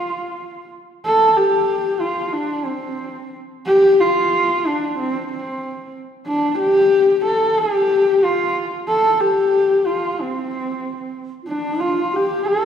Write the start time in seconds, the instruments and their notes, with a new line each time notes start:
Already playing: horsehead fiddle F4
1.06 horsehead fiddle A4
1.36 horsehead fiddle G4
2.00 horsehead fiddle F4
2.33 horsehead fiddle D4
2.65 horsehead fiddle C4
3.66 horsehead fiddle G4
4.01 horsehead fiddle F4
4.67 horsehead fiddle D4
4.99 horsehead fiddle C4
5.33 horsehead fiddle C4
6.27 horsehead fiddle D4
6.59 horsehead fiddle G4
7.25 horsehead fiddle A4
7.58 horsehead fiddle G4
8.24 horsehead fiddle F4
8.89 horsehead fiddle A4
9.20 horsehead fiddle G4
9.86 horsehead fiddle F4
10.20 horsehead fiddle C4
11.43 xiao F4
11.48 horsehead fiddle D4, xiao D4
11.80 xiao F4, horsehead fiddle F4
12.13 xiao G4, horsehead fiddle G4
12.45 xiao A4, horsehead fiddle A4